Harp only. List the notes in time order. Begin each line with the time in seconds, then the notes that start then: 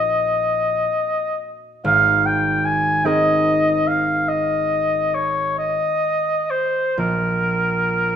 Already playing: A#1 C4 D#4 F#4 A#4
1.84 G#1
3.05 C4 D#4 G#4 A#4
6.98 A#1